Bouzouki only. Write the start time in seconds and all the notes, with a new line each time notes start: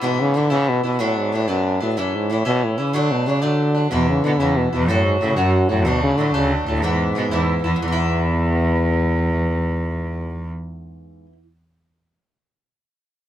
0.01 G#2 E3 B3 E4
0.34 G#2 E3 B3 E4
0.50 G#2 E3 B3 E4
0.84 E3 B3 E4
0.99 A2 F#3 B3 D4
1.32 A2 F#3 B3 D4
1.48 A2 F#3 B3 D4
1.80 F#3 B3 D4
1.97 A2 E3 C#4 E4
2.30 A2 E3 C#4 E4
2.45 A2 E3 C#4 E4
2.78 E3 C#4 E4
2.93 A2 F#3 A3 D4
3.26 A2 F#3 A3 D4
3.42 A2 F#3 A3 D4
3.75 F#3 A3 D4
3.91 G#2 E3 B3 E4
4.24 G#2 E3 B3 E4
4.40 G#2 E3 B3 E4
4.73 E3 B3 E4
4.88 A2 F#3 C#4 F#4
5.21 A2 F#3 C#4 F#4
5.36 A2 F#3 C#4 F#4
5.69 F#3 C#4 F#4
5.85 A2 F#3 A3 D4
6.18 A2 F#3 A3 D4
6.34 A2 F#3 A3 D4
6.66 F#3 A3 D4
6.82 G#2 E3 B3 E4
7.15 G#2 E3 B3 E4
7.31 G#2 E3 B3 E4
7.64 E3 B3 E4
7.76 G#2
7.82 E3
7.88 B3
7.92 E4